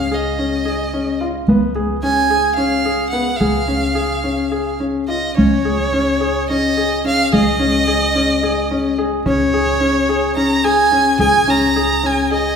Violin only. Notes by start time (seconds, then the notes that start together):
Already playing: F5
0.14 D#5
2.03 G#5
2.56 F5
3.10 F#5
3.37 F5
5.08 D#5
5.37 C#5
6.50 D#5
7.07 F5
7.35 D#5
9.28 C#5
10.37 A#5
10.65 G#5
11.20 G#5
11.50 A#5
12.06 G#5
12.33 D#5